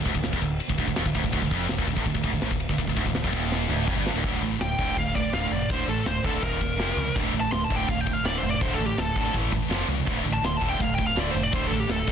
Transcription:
0.05 D1 D2, kick, ride
0.15 D1 D2, kick
0.23 D1 D2, snare, ride
0.33 F1 F2, kick
0.41 D1 D2, kick, ride
0.60 ride
0.69 D1 D2, kick
0.78 D1 D2, kick, ride
0.87 D1 D2, kick
0.96 D#1 D#2, snare, ride
1.05 D1 D2, kick
1.15 D1 D2, kick, ride
1.24 D1 D2, kick, snare
1.32 D1 D2, kick, crash
1.42 D1 D2, kick
1.51 F1 F2, kick, ride
1.69 D1 D2, snare, ride
1.78 D#1 D#2, kick
1.87 D1 D2, kick, ride
1.96 A1 A2, kick
2.05 D1 D2, kick, ride
2.14 D1 D2, kick
2.24 D1 D2, kick, ride
2.33 D1 D2, kick
2.42 A1 A2, snare, ride
2.51 D1 D2, kick
2.60 ride
2.69 D1 D2, kick, snare
2.78 D1 D2, kick, ride
2.87 D1 D2, kick, snare
2.97 D1 D2, kick, ride
3.06 D1 D2, kick
3.15 D1 D2, snare, ride
3.24 F1 F2, kick
3.33 D#1 D#2, kick, ride
3.52 snare
3.69 D1 D2, mid tom
3.87 F1 F2, kick
3.96 G1 G2
4.07 snare
4.13 D1 D2
4.24 D1 D2 A2 D3, kick, crash
4.41 A1 D2 A2
4.60 D1 D2 A2 G5, snare, crash
4.78 D1 D2 A2 D3, kick
4.96 D1 D2 A2 F5, kick, crash
5.15 D2 A2 D5, kick
5.33 D1 D2 A2 D3 F5, snare, crash
5.51 F1 D2 A2 D5
5.70 D1 D2 A2 D3 C5, kick, crash
5.88 A1 D2 A2 A4
6.05 D1 D2 A2 C5, snare, crash
6.24 D1 D2 A2 D3 A4, kick
6.43 D#1 D#2 A#2 D#3 A#4, kick, crash
6.61 D#2 A#2, kick
6.79 F1 F2 C3 F3, snare, crash
6.97 C#2 F2 C3
7.16 D1 D2 A2 D3, kick, crash
7.33 A1 D2 A2
7.40 A5
7.52 D1 D2 A2 C6, snare, crash
7.64 A5
7.70 D1 D2 A2 D3, kick
7.76 G5
7.88 D1 D2 A2 F5, kick, crash
8.01 G5
8.06 D2 A2, kick
8.13 F5
8.24 D1 D2 A2 D3 D5, snare, crash
8.38 C5
8.42 F1 D2 A2
8.50 D5
8.61 D1 D2 A2 D3 C5, kick, crash
8.71 A4, snare
8.79 A1 D2 A2
8.86 G4
8.97 D1 D2 A2 A4, snare, crash
9.16 G#1 D2 A2 D3, kick
9.34 A1 A2 E3 A3, kick, crash
9.52 A2 E3, kick
9.70 F1 F2 C3 F3, snare, crash
9.88 C#2 F2 C3
10.07 D1 D2 A2 D3, kick, crash
10.24 A1 D2 A2
10.33 A5
10.43 D1 D2 A2 C6, snare, crash
10.57 A5
10.61 D1 D2 A2 D3, kick
10.69 G5
10.79 D1 D2 A2 F5, kick, crash
10.95 D2 A2 G5, kick
11.07 F5, snare
11.16 D1 D2 A2 D3 D5, snare, crash
11.31 F1 D2 C5
11.35 A2
11.43 D5
11.52 D1 D2 A2 D3 C5, kick, crash
11.67 A1 A4
11.72 D2 A2
11.80 G4
11.89 D1 D2 A2 A4, snare, crash
12.07 D1 D2 A2 D3, kick

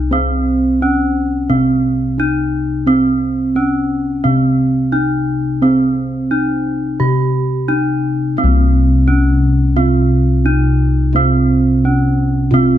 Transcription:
Already playing: C2 D#4
0.11 C4
0.81 C#4
1.50 C3 C4
2.18 C#4 D#4
2.87 C4
3.56 C#4
4.24 C3 C4
4.92 C#4 D#4
5.62 C4
6.31 C#4 D#4
7.00 C3 G4
7.68 C#4 D#4
8.37 C3 C4
8.44 C2
9.08 C#4
9.76 C3 C4
10.45 C#4 D#4
11.13 C3 C4
11.84 C#4
12.51 C3 C4

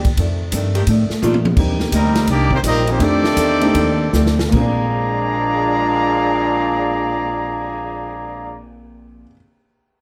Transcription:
Already playing: D#2
0.05 kick, ride
0.17 F2 D#3 A3 D4, kick, ride
0.52 F2 G2 D#3 A3 D4, kick, hi-hat pedal, ride
0.75 D#3 A3 D4 G4, ride
0.87 F2 A2 D#3 A3 D4, kick, ride
1.10 muted upright bass stroke, snare
1.22 F2 A#2 D#3 A3 D4 F4, hi-hat pedal, high tom
1.34 high tom
1.45 high tom
1.56 D#2 C3 G3 A#3 C4 D4 D#4 G4, kick, crash
1.61 D#4
1.80 snare
1.92 D2 C3 G3 A#3 C4 D#4 A#4, kick, hi-hat pedal, ride
2.15 snare, ride
2.27 C2 C3 G3 A#3 D4 D#4 G4 D5, kick, ride
2.51 D#3 G3 A#3 C4 D#4 G4 C5, kick
2.63 A#1 C3 G3 A#3 C4 D#4 G4 A#4 D#5, kick, hi-hat pedal, ride
2.87 D#3 G3 A#3 C4 D#4 G4 C5, ride
2.99 F2 D#3 A3 C4 D4 D#4 G4 D5, kick, ride
3.03 D4 A4
3.24 snare
3.36 E2 F2 D#3 A3 D4, kick, hi-hat pedal, ride
3.61 A3 C4 D4 D#4 G4, ride
3.74 D#2 F2 D#3 A3 D4, kick, ride
4.13 D2 F2 D#3 A3 D4, snare, hi-hat pedal
4.26 snare
4.39 snare
4.49 A#2 A#3, crash
4.53 A#1 A#2 F3 G#3 C4 D4 G#4 D5 F5 A#5, kick
4.57 C4 D4 G#4
4.80 cymbal swell

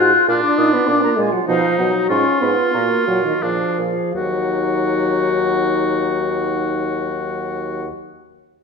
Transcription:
Already playing: F4 F#4
0.00 G#2 F4 F#6
0.27 A#2 D4 F4 F6
0.42 D4 D6
0.57 A#2 D#4 F4 D#6
0.72 B3 B5
0.87 A#2 D4 F4 D6
1.03 A#3 A#5
1.17 A#2 G#3 F4 G#5
1.32 F#3 F#5
1.47 B2 F3 D#4 F5
1.78 B2 F#3 D#4 F#5
2.08 G#2 C#4 F4 C#6
2.41 G#2 B3 F4 B5
2.73 A#2 A#3 F#4 A#5
3.07 A#2 F#3 F#4 F#5
3.24 D#3 D#5
3.42 A#2 F3 D4 G#4 F5
3.78 A#2 G#4
4.14 D#2 F#3 D#4 F#4 F#5

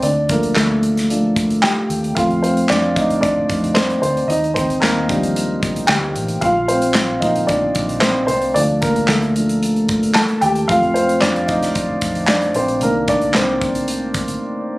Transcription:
0.02 D2 D4 D5, closed hi-hat
0.29 F3 A3 A#3 D4 A#4, kick, closed hi-hat
0.43 closed hi-hat
0.55 D2 A3 A4, snare, clap
0.83 closed hi-hat
0.97 snare, closed hi-hat
1.10 F3 A3 D4, closed hi-hat
1.36 kick, closed hi-hat
1.50 closed hi-hat
1.62 C2 G4 G5, snare, clap
1.89 D#2, closed hi-hat
2.04 closed hi-hat
2.15 F2 F3 A3 C4 F4 F5, kick, closed hi-hat
2.31 closed hi-hat
2.43 C4 C5, closed hi-hat
2.57 closed hi-hat
2.69 F2 D4 D5, snare, clap
2.96 D#4 D#5, kick, closed hi-hat
3.10 closed hi-hat
3.21 D4 D5, kick, closed hi-hat
3.49 F2, kick, closed hi-hat
3.64 closed hi-hat
3.74 C4 C5, snare, clap
3.90 closed hi-hat
4.02 D2 C4 C5, closed hi-hat
4.17 closed hi-hat
4.28 D#2 D#4 D#5, closed hi-hat
4.44 closed hi-hat
4.54 C4 C5, kick, closed hi-hat
4.70 closed hi-hat
4.80 D#2 A#3 A#4, snare, clap
5.08 F3 G3 D4, kick, closed hi-hat
5.23 closed hi-hat
5.36 closed hi-hat
5.63 kick, closed hi-hat
5.76 closed hi-hat
5.87 D2 G4 G5, snare, clap
6.16 A1, closed hi-hat
6.28 closed hi-hat
6.41 A#1 F4 F5, kick, closed hi-hat
6.68 C4 C5, closed hi-hat
6.82 closed hi-hat
6.94 A#1, snare, clap
7.20 F3 A#3 C4 D#4 D#5, kick, closed hi-hat
7.36 closed hi-hat
7.47 D4 D5, kick, closed hi-hat
7.75 A#1, kick, closed hi-hat
7.89 closed hi-hat
8.00 C4 C5, snare, clap
8.27 C2 C4 C5, closed hi-hat
8.42 closed hi-hat
8.54 D2 F3 A3 D4 D5, closed hi-hat
8.81 A#3 A#4, kick, closed hi-hat
8.96 closed hi-hat
9.08 D2 A3 A4, snare, clap
9.22 closed hi-hat
9.35 F3 A3 D4, closed hi-hat
9.49 closed hi-hat
9.63 closed hi-hat
9.76 closed hi-hat
9.89 kick, closed hi-hat
10.03 closed hi-hat
10.14 C2 A4 A5, snare, clap
10.28 closed hi-hat
10.41 D#2 G4 G5, closed hi-hat
10.55 closed hi-hat
10.68 F2 F3 A3 C4 F4 F5, kick, closed hi-hat
10.83 closed hi-hat
10.94 C4 C5, closed hi-hat
11.09 closed hi-hat
11.21 F2 D4 D5, snare, clap
11.36 closed hi-hat
11.47 D#4 D#5, kick, closed hi-hat
11.62 snare, closed hi-hat
11.75 kick, closed hi-hat
12.01 F2, kick, closed hi-hat
12.15 closed hi-hat
12.28 D4 D5, snare, clap
12.42 closed hi-hat
12.54 A#1 C4 C5, closed hi-hat
12.68 closed hi-hat
12.81 C2 D#3 A#3 D4 A#4, closed hi-hat
13.08 D4 D5, kick, closed hi-hat
13.21 closed hi-hat
13.34 C2 C4 C5, snare, clap
13.62 kick, closed hi-hat
13.75 closed hi-hat
13.88 closed hi-hat
14.14 kick, closed hi-hat
14.28 closed hi-hat

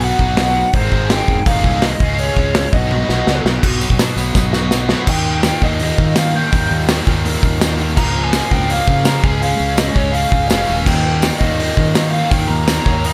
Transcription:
Already playing: B1 B2 F#3 B3 D#4 F#4 D#5 B5 D#6
0.01 F#5, open hi-hat
0.19 B1, kick
0.37 snare, open hi-hat
0.73 G#1 G#2 D#3 G#3 C4 D#4 G#4 C5 F5 C6, kick, open hi-hat
0.92 G#1, kick
1.09 G5, snare, open hi-hat
1.28 E1, kick
1.45 D#1 D#2 A#2 D#3 G#3 A#3 D#4 G#4 D#5 F5 A#5 D#6, kick, open hi-hat
1.64 C2, kick
1.82 D#5, snare, open hi-hat
1.99 C#2 C#3 G#3 C#4 F4 G#4 F5 C6 C#6, kick
2.18 C#5, open hi-hat
2.37 C#2, kick
2.55 snare, open hi-hat
2.72 B1 B2 F#3 B3 D#4 F#4 D#5 B5 D#6, kick
2.76 F#4
2.91 high tom
3.09 B1, snare
3.27 C#2, snare
3.45 B1, snare
3.63 B1 B2 F#3 B3 F#4 D#5 B5 D#6, kick, crash
3.81 B2 F#3, open hi-hat, tambourine
3.90 B2, kick
3.99 B2 F#3, snare, open hi-hat, tambourine
4.16 B1 B2 F#3 B3, open hi-hat, tambourine
4.35 B1 B2 F#3 D#4, kick, snare, tambourine
4.53 B2 F#3 F#4, snare, tambourine
4.71 B2 F#3 B3, snare, tambourine
4.88 B2 F#3 B3 F#4, snare, tambourine
5.07 D#2 A#2 D#3 D#4 F5 G5, kick, crash
5.43 D#2 A#2 D#3, snare, open hi-hat, tambourine
5.62 D#2 A#2 D#3 D#5, kick
5.79 D#2 A#2 D#3, open hi-hat
5.98 D#3, kick
6.16 D#2 A#2 D#3 F5, snare, open hi-hat, tambourine
6.34 D#2 A#2 D#3 G5
6.51 D#2 A#2 D#3, kick, open hi-hat
6.71 D#2
6.88 D#2 A#2 D#3, snare, open hi-hat, tambourine
7.05 D#2 A#2 D#3, kick
7.24 D#2 A#2 D#3, open hi-hat
7.43 D#2, kick
7.59 D#2 A#2 D#3, snare, open hi-hat, tambourine
7.77 D#2 A#2 D#3
7.95 C#2 A#2 C#3 F3 A#3 C5 A#5, kick, crash
8.24 G#5
8.31 A#2 F3 A#3, snare, open hi-hat, tambourine
8.50 C#2 A#2 F3 A#3 G5, kick
8.67 A#2 F3 A#3 F5, open hi-hat
8.88 C#3, kick
9.04 A#2 F3 A#3 A#5, snare, open hi-hat, tambourine
9.22 C#2 C#3 G#3 C#4 G#4 F5 G#5, kick
9.40 C#3 G#3 C#4 F5, open hi-hat
9.60 C#2
9.76 C#3 G#3 C#4 D#5, snare, open hi-hat, tambourine
9.94 C#2 C#3 G#3 C#4 C#5, kick
10.12 C#3 G#3 C#4 F5, open hi-hat
10.32 C#2, kick
10.48 F1 C#3 G#3 C#4 F5, snare, open hi-hat, tambourine
10.67 D#1 C#3 G#3 C#4
10.85 D#2 A#2 D#3 A#3 G4 G5, kick, crash
11.22 D#2 A#2 D#3, snare, open hi-hat, tambourine
11.38 D#2 A#2 D#3 D#5, kick
11.57 D#2 A#2 D#3, open hi-hat
11.77 D#3, kick
11.94 D#2 A#2 D#3, snare, open hi-hat, tambourine
12.11 D#2 A#2 D#3 F5
12.16 D#3
12.29 D#2 A#2 D#3 G5, kick, open hi-hat
12.47 D#2 A#5
12.67 D#2 A#2 D#3, snare, open hi-hat, tambourine
12.85 D#2 A#2 D#3 C#5, kick
13.04 D#2 A#2 D#3 D#5, open hi-hat

